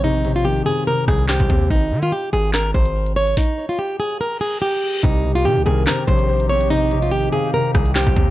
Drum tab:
HH |x-xx--x----x--x-|x--x--x---xx-x-x|----------------|x--x--x---xx-x-x|
CP |------------x---|--------x-------|----------------|--------x-------|
SD |----------r-o---|--------o-------|o---------------|--------o-------|
BD |----------o--oo-|o---------o-----|o---------------|o---------o-----|

HH |x-xx--x----x--x-|
CP |------------x---|
SD |----------r-o---|
BD |----------o--oo-|